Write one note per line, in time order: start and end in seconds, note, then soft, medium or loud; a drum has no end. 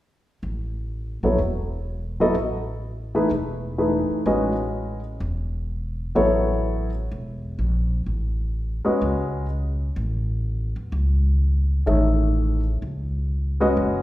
0.43 1.19 A1 medium
1.23 1.38 A#1 medium
1.23 1.37 F#3 soft
1.23 1.38 B3 soft
1.23 1.38 E4 soft
1.23 1.38 A4 soft
1.23 1.38 C#5 soft
1.38 2.30 E1 medium
2.20 2.34 F#3 medium
2.20 2.34 B3 medium
2.20 2.34 E4 medium
2.20 2.34 A4 medium
2.20 2.34 D#5 medium
2.35 3.26 A1 medium
3.15 3.29 E3 medium
3.15 3.29 A3 soft
3.15 3.29 D#4 soft
3.15 3.29 G#4 soft
3.15 3.29 B4 medium
3.31 4.06 E1 medium
3.78 4.51 E3 soft
3.78 4.51 A3 soft
3.78 4.52 D#4 soft
3.78 4.52 G#4 soft
3.78 4.25 B4 medium
4.10 muted upright bass stroke soft
4.26 5.17 A1 medium
4.26 4.99 G#3 medium
4.26 4.99 C#4 soft
4.26 4.99 F#4 soft
4.26 4.99 B4 soft
4.26 5.00 D#5 medium
5.20 6.12 E1 medium
6.15 7.07 A1 medium
6.15 6.89 F#3 medium
6.15 6.89 B3 medium
6.15 6.89 E4 medium
6.15 6.89 A4 medium
6.15 6.89 C#5 medium
7.12 7.56 E1 medium
7.59 8.03 A#1 medium
8.06 8.82 A1 medium
8.85 9.45 G#3 medium
8.85 9.45 C#4 medium
8.85 9.46 F#4 medium
8.85 9.46 B4 medium
8.85 9.46 D#5 medium
8.85 muted upright bass stroke soft
9.02 9.93 C#2 medium
9.96 10.72 A1 medium
10.76 10.90 E2 medium
10.92 11.83 C#2 medium
11.86 12.78 A1 medium
11.86 12.60 D#3 soft
11.86 12.59 A3 soft
11.86 12.60 G#4 soft
11.86 12.60 C#5 soft
11.86 12.60 E5 soft
12.82 13.73 C#2 medium
13.60 14.02 G#3 medium
13.60 14.02 C#4 medium
13.60 14.02 F#4 medium
13.60 14.02 B4 medium
13.60 14.02 D#5 medium
13.77 14.02 F#1 medium